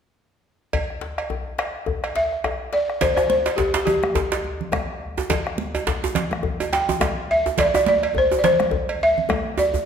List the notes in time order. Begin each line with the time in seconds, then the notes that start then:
0.73 bombo low, cowbell, djembe slap, djembe tone, djembe bass
0.90 bombo rim
1.01 djembe slap
1.18 bombo rim, cowbell
1.30 djembe tone, djembe bass
1.58 bombo rim, cowbell, djembe slap
1.76 bombo rim
1.86 bombo rim, bombo low, djembe tone, djembe bass
2.04 bombo rim, cowbell
2.15 E5, bombo rim, djembe slap
2.33 bombo rim
2.44 bombo rim, cowbell, djembe tone, djembe bass
2.73 D5, bombo rim, djembe slap
2.89 bombo rim, djembe slap
3.01 C5, bombo rim, bombo low, cowbell, djembe slap, djembe tone, low conga, djembe bass
3.14 C5 D5, bombo rim, djembe tone, high conga
3.29 C5, djembe slap, high conga
3.46 cowbell, djembe slap
3.56 G4, bombo low, djembe slap, djembe tone, djembe bass
3.74 djembe slap, high conga
3.85 G4, bombo rim, cowbell, djembe tone, low conga
4.03 bombo rim, djembe slap, high conga
4.15 bombo low, djembe slap, djembe tone, djembe bass
4.32 cowbell, djembe slap
4.44 high conga
4.61 low conga
4.72 bombo rim, bombo low, cowbell, djembe tone, high conga, djembe bass
5.17 bombo rim, djembe slap, djembe tone
5.30 bombo rim, bombo low, cowbell, djembe slap, djembe tone, djembe bass, low conga
5.47 bombo rim, high conga
5.58 djembe slap, high conga
5.75 cowbell, djembe tone
5.87 bombo low, djembe slap, djembe tone, djembe bass
6.02 high conga, djembe tone
6.15 bombo rim, cowbell, djembe slap, low conga
6.31 bombo rim, djembe slap, high conga
6.43 bombo low, djembe slap, djembe tone, djembe bass
6.60 cowbell, djembe tone
6.72 G5, djembe slap, high conga
6.89 djembe tone, low conga
7.00 bombo rim, bombo low, cowbell, djembe slap, djembe tone, high conga, djembe bass
7.31 E5
7.46 bombo rim, djembe slap, djembe tone
7.58 D5, bombo rim, bombo low, cowbell, djembe slap, djembe tone, djembe bass, low conga
7.74 D5, bombo rim, djembe tone
7.86 D5, djembe slap, high conga
8.03 cowbell
8.15 C5, bombo low, djembe slap, djembe tone, djembe bass
8.31 djembe tone, high conga
8.39 D5
8.44 C5, bombo rim, cowbell, djembe slap, low conga
8.60 bombo rim, djembe slap, high conga
8.71 bombo low, djembe slap, djembe tone, djembe bass
8.89 cowbell
9.01 E5, high conga
9.18 low conga
9.29 bombo rim, bombo low, cowbell, djembe tone, high conga, djembe bass
9.58 D5, djembe tone
9.74 bombo rim, djembe slap, djembe bass